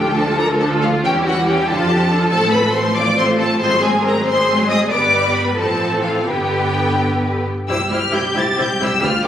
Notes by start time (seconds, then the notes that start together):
Already playing: D2 G4 A4 G5
0.06 A3 F4
0.15 F3 D4 A4 A5
0.27 A3 F4
0.37 F3 D4 A#4 A#5
0.49 A3 F4
0.59 F3 D4 A4 A5
0.72 A3 F4
0.82 F3 D4 F4 F5
0.94 A3 F4
1.03 E2 E3 C#4 G4 G5
1.16 G3 E4
1.26 E3 C#4 F#4 F#5
1.37 G3 E4
1.46 E3 C#4 G4 G5
1.57 G3 E4
1.67 F2 D3 D4 F4 A4 A5
1.79 F3 F4
1.88 D3 D4 G4
1.99 F3 F4
2.10 D3 D4 A4
2.21 F3 F4
2.30 A1 A3 C4 A4 A5
2.43 F3 A3
2.52 A3 C4 B4 B5
2.64 F3 A3
2.72 A3 C4 C5 C6
2.84 F3 A3
2.94 A3 C4 F4 D5 D6
3.05 F3 A3
3.16 A3 C4 C5 C6
3.28 F3 A3
3.38 A3 C4 A4 A5
3.51 F3 A3
3.59 G#1 G#3 C4 G#4 C5 C6
3.72 F#3 G#3
3.80 G#3 C4 G#4 G#5
3.93 F#3 G#3
4.01 G#3 C4 A#4
4.06 A#5
4.14 F#3 G#3
4.24 G#3 C4 G#4 C5 C6
4.37 F#3 G#3
4.46 G#3 C4
4.58 F#3 G#3
4.68 G#3 C4 D#5 D#6
4.79 F#3 G#3
4.89 G1 G3 B3 B4 D5 D6
5.34 B4 B5
5.56 A1 F3 C4 A4 A5
5.92 E3
6.02 F4 F5
6.26 G1 D3 B3 G4 B4 G5
7.68 C2 G3 E4 G4 C5 E6
7.91 C2 G3 E4 G4 C5 F6
8.12 C2 G3 E4 G4 C5 G6
8.36 C2 G3 E4 G4 C5 A6
8.57 C2 G3 E4 G4 C5 G6
8.79 C2 G3 E4 G4 C5 E6
9.00 D2 G3 F4 G4 B4 F6
9.23 D2 G3 G4 B4